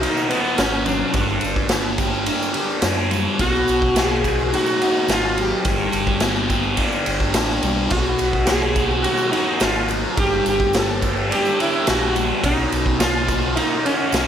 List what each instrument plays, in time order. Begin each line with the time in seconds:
Already playing: distorted electric guitar B2 A#3 F#4
0.01 sitar D#4, distorted electric guitar D#4, ride, tambourine
0.17 tambourine
0.29 sitar B3, distorted electric guitar F#4, ride
0.46 tambourine
0.58 fingered electric bass G#1, sitar C#4, distorted electric guitar D#4, snare, ride, tambourine
0.85 distorted electric guitar F#3, sitar D4, ride, tambourine
1.12 fingered electric bass G1, distorted electric guitar G2, kick, ride, tambourine
1.29 tambourine
1.41 fingered electric bass G1, ride, tambourine
1.56 kick
1.69 distorted electric guitar B3, snare, ride, tambourine
1.98 distorted electric guitar G4, kick, ride, tambourine
2.14 tambourine
2.26 distorted electric guitar D4, ride, tambourine
2.42 tambourine
2.54 distorted electric guitar G4, ride
2.71 tambourine
2.82 fingered electric bass F#2, distorted electric guitar D4, snare, ride, tambourine
3.11 distorted electric guitar G3, ride, tambourine
3.39 fingered electric bass B1, distorted electric guitar B2, sitar F#4, kick, ride, tambourine
3.56 tambourine
3.68 fingered electric bass B1, ride, tambourine
3.82 kick
3.95 distorted electric guitar A#3, sitar G#4, snare, ride, tambourine
4.23 distorted electric guitar F#4, kick, ride, tambourine
4.39 tambourine
4.53 distorted electric guitar D#4, sitar F#4, ride, tambourine
4.66 tambourine
4.82 sitar D#4, distorted electric guitar F#4, ride
4.94 tambourine
5.08 fingered electric bass G#1, distorted electric guitar D#4, sitar F4, snare, ride, tambourine
5.37 distorted electric guitar F#3, sitar G4, ride
5.64 fingered electric bass G1, distorted electric guitar G2, kick, ride, tambourine
5.80 tambourine
5.92 fingered electric bass G1, ride, tambourine
6.07 kick, tambourine
6.20 distorted electric guitar B3, snare, ride, tambourine
6.35 tambourine
6.49 distorted electric guitar G4, kick, ride, tambourine
6.63 tambourine
6.77 distorted electric guitar D4, kick, ride, tambourine
6.92 tambourine
7.06 fingered electric bass G1, distorted electric guitar G4, ride, tambourine
7.20 kick, tambourine
7.34 fingered electric bass A1, distorted electric guitar D4, snare, ride, tambourine
7.50 snare
7.63 fingered electric bass B1, distorted electric guitar G3, ride, tambourine
7.90 fingered electric bass B1, distorted electric guitar B2, sitar F#4, kick, ride, tambourine
8.06 tambourine
8.19 fingered electric bass B1, ride, tambourine
8.33 kick
8.46 distorted electric guitar A#3, sitar G#4, snare, ride, tambourine
8.76 distorted electric guitar F#4, kick, ride, tambourine
8.91 sitar F#4, tambourine
9.03 distorted electric guitar D#4, sitar F#4, ride, tambourine
9.18 tambourine
9.32 sitar D#4, distorted electric guitar F#4, ride
9.60 fingered electric bass G#1, distorted electric guitar D#4, sitar F4, snare, ride, tambourine
9.88 distorted electric guitar F#3, ride, tambourine
10.17 fingered electric bass G1, distorted electric guitar G2, sitar G4, kick, ride, tambourine
10.32 tambourine
10.46 fingered electric bass G1, sitar G4, ride, tambourine
10.60 kick
10.73 distorted electric guitar B3, sitar A4, snare, ride, tambourine
11.02 distorted electric guitar G4, kick, ride, tambourine
11.17 tambourine
11.30 distorted electric guitar D4, sitar G4, ride, tambourine
11.45 tambourine
11.59 sitar E4, distorted electric guitar G4, ride
11.73 tambourine
11.87 fingered electric bass A#1, distorted electric guitar D4, sitar F#4, snare, ride, tambourine
12.16 distorted electric guitar G3, ride, tambourine
12.43 fingered electric bass B1, distorted electric guitar B2, sitar D#4, kick, ride, tambourine
12.59 tambourine
12.72 fingered electric bass B1, ride, tambourine
12.86 kick
12.99 distorted electric guitar A#3, sitar F4, snare, ride, tambourine
13.27 distorted electric guitar F#4, kick, ride, tambourine
13.43 tambourine
13.56 sitar D#4, distorted electric guitar D#4, ride, tambourine
13.85 sitar C#4, distorted electric guitar F#4, ride
14.12 fingered electric bass B1, distorted electric guitar D#4, snare, ride, tambourine